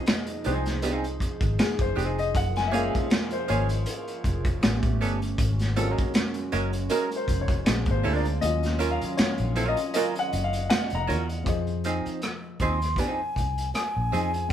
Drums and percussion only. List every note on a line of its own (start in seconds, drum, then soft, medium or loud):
0.06 finger snap medium
0.06 snare loud
0.06 closed hi-hat medium
0.27 closed hi-hat medium
0.44 closed hi-hat medium
0.66 snare soft
0.66 closed hi-hat medium
0.82 closed hi-hat medium
1.04 closed hi-hat soft
1.20 kick medium
1.20 closed hi-hat medium
1.41 kick loud
1.41 closed hi-hat medium
1.59 finger snap medium
1.59 snare loud
1.59 closed hi-hat medium
1.79 kick loud
1.79 closed hi-hat soft
1.98 closed hi-hat medium
2.18 closed hi-hat soft
2.35 kick loud
2.35 closed hi-hat medium
2.56 snare soft
2.56 closed hi-hat soft
2.73 closed hi-hat medium
2.95 kick medium
2.95 closed hi-hat soft
3.10 finger snap medium
3.10 snare loud
3.10 closed hi-hat medium
3.31 closed hi-hat soft
3.48 closed hi-hat medium
3.69 closed hi-hat medium
3.86 closed hi-hat medium
4.08 closed hi-hat soft
4.24 kick medium
4.24 closed hi-hat medium
4.45 kick loud
4.45 closed hi-hat medium
4.63 finger snap medium
4.63 snare loud
4.63 closed hi-hat medium
4.83 kick loud
4.83 closed hi-hat soft
5.02 closed hi-hat medium
5.22 closed hi-hat soft
5.38 kick loud
5.38 closed hi-hat medium
5.59 snare soft
5.59 closed hi-hat soft
5.76 closed hi-hat medium
5.98 kick loud
5.98 closed hi-hat soft
6.14 finger snap medium
6.14 snare loud
6.14 closed hi-hat medium
6.34 closed hi-hat medium
6.52 closed hi-hat medium
6.73 closed hi-hat medium
6.90 closed hi-hat medium
7.12 closed hi-hat soft
7.28 kick medium
7.28 closed hi-hat medium
7.48 kick loud
7.48 closed hi-hat medium
7.66 finger snap medium
7.66 snare loud
7.66 closed hi-hat medium
7.86 kick loud
7.86 closed hi-hat soft
8.05 open hi-hat soft
8.25 closed hi-hat soft
8.42 closed hi-hat medium
8.63 snare soft
8.63 closed hi-hat soft
8.80 closed hi-hat medium
9.01 closed hi-hat soft
9.18 finger snap medium
9.18 snare loud
9.18 closed hi-hat medium
9.38 closed hi-hat medium
9.56 closed hi-hat medium
9.77 closed hi-hat medium
9.94 closed hi-hat loud
10.15 closed hi-hat soft
10.33 closed hi-hat medium
10.53 closed hi-hat medium
10.70 finger snap medium
10.70 snare loud
10.70 closed hi-hat medium
10.90 closed hi-hat medium
11.10 closed hi-hat medium
11.29 closed hi-hat soft
11.46 kick loud
11.46 closed hi-hat medium
11.67 closed hi-hat soft
11.84 closed hi-hat medium
12.06 closed hi-hat soft
12.22 cross-stick loud
12.22 closed hi-hat medium
12.60 kick medium
12.60 closed hi-hat medium
12.82 cross-stick soft
12.82 closed hi-hat soft
12.96 kick medium
12.96 closed hi-hat medium
13.36 kick medium
13.36 closed hi-hat medium
13.58 closed hi-hat soft
13.75 cross-stick loud
13.75 closed hi-hat medium
14.14 closed hi-hat medium
14.34 closed hi-hat soft